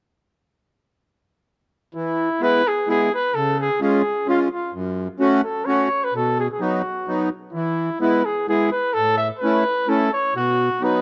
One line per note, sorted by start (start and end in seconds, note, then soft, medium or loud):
1.95 2.29 E3 medium
1.95 2.44 E4 medium
2.40 2.62 G#3 medium
2.40 2.62 B3 medium
2.40 2.63 E4 medium
2.40 2.69 B4 medium
2.68 2.89 G#4 medium
2.87 3.09 G#3 soft
2.87 3.09 B3 soft
2.87 3.09 E4 medium
2.87 3.11 G#4 medium
3.14 3.36 B4 medium
3.35 3.69 C#3 medium
3.35 3.58 A4 medium
3.61 3.80 G#4 medium
3.81 4.02 G#3 medium
3.81 4.02 C#4 medium
3.81 4.02 F4 medium
3.81 4.25 G#4 medium
4.27 4.48 G#3 medium
4.27 4.48 C#4 soft
4.27 4.49 F4 soft
4.27 4.39 F4 medium
4.51 4.72 F4 medium
4.73 5.08 F#2 medium
5.20 5.41 A3 medium
5.20 5.41 C#4 medium
5.20 5.41 F#4 medium
5.44 5.67 A4 medium
5.66 5.88 A3 soft
5.66 5.88 C#4 soft
5.66 5.89 F#4 medium
5.66 6.06 C#5 medium
6.04 6.14 B4 medium
6.14 6.48 B2 medium
6.14 6.37 A4 medium
6.40 6.47 G#4 medium
6.52 6.64 G#4 soft
6.60 6.82 F#3 medium
6.60 6.82 B3 soft
6.60 6.82 D#4 medium
6.60 7.32 F#4 medium
7.08 7.29 F#3 soft
7.08 7.29 B3 soft
7.08 7.29 D#4 medium
7.53 7.89 E3 medium
7.53 7.97 E4 medium
8.00 8.22 G#3 medium
8.00 8.23 B3 medium
8.00 8.23 E4 medium
8.00 8.27 B4 medium
8.25 8.48 G#4 medium
8.48 8.70 G#3 soft
8.48 8.70 B3 soft
8.48 8.70 E4 soft
8.48 8.71 G#4 medium
8.72 8.95 B4 medium
8.94 9.30 A2 medium
8.94 9.17 A4 medium
9.17 9.28 E5 medium
9.39 9.63 A3 medium
9.39 9.91 B4 medium
9.43 9.64 C#4 medium
9.43 9.64 E4 medium
9.88 10.09 A3 soft
9.88 10.09 C#4 soft
9.88 10.09 E4 medium
9.88 10.12 A4 medium
10.13 10.33 C#5 medium
10.35 10.69 B2 medium
10.35 10.85 F#4 medium
10.81 11.02 F#3 medium
10.81 11.02 B3 medium
10.81 11.02 D#4 medium
10.81 11.02 B4 medium